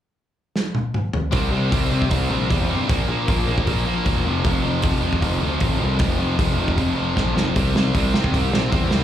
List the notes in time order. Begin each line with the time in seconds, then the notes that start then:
0.56 snare
0.75 high tom
0.94 mid tom
1.13 floor tom
1.31 C2 C3 G3 C4, kick, open hi-hat
1.50 C2 C3 G3 C4
1.70 C2 C3 G3 C4, kick, open hi-hat
1.90 C3 G3 C4
2.02 kick
2.09 C2 C3 G3 C4, kick, open hi-hat
2.29 A#1 C3 G3 C4
2.49 E2 C3 G3 C4, kick, open hi-hat
2.70 G1 C3 G3 C4
2.88 A#1 A#2 F3 A#3, kick, open hi-hat
3.07 A#1 A#2 F3 A#3
3.27 A#1 A#2 F3 A#3, kick, open hi-hat
3.46 A#1 A#2 F3 A#3
3.58 kick
3.65 A#1 A#2 F3 A#3, kick, open hi-hat
3.85 A#2 F3 A#3
4.04 E1 A#2 F3 A#3, kick, open hi-hat
4.24 F1 F2 C3 F3
4.43 F1 F2 C3 F3, kick, open hi-hat
4.62 F1 F2 C3 F3
4.82 F1 F2 C3 F3, kick, open hi-hat
5.00 F2 C3 F3
5.13 kick
5.21 F1 F2 C3 F3, kick, open hi-hat
5.39 D2 F2 C3 F3
5.59 A1 F2 C3 F3, kick, open hi-hat
5.79 C2 F2 C3 F3
5.98 F1 F2 C3 F3, kick, open hi-hat
6.18 F1 F2 C3 F3
6.37 F1 F2 C3 F3, kick, open hi-hat
6.57 F1 F2 C3 F3
6.68 kick
6.76 F1 F2 C3 F3, kick, open hi-hat
6.95 F2 C3 F3
7.15 A#1 F2 C3 F3, kick, snare
7.34 F1 F2 C3 F3, snare
7.56 C2 C3 G3 C4, kick, open hi-hat
7.74 C2 C3 G3 C4, snare
7.94 C2 C3 G3 C4, kick, open hi-hat
8.13 C3 G3 C4, snare
8.24 kick
8.31 C2 C3 G3 C4, kick, open hi-hat
8.51 A#1 C3 G3 C4, snare
8.70 E2 C3 G3 C4, kick, open hi-hat
8.89 C2 C3 G3 C4, snare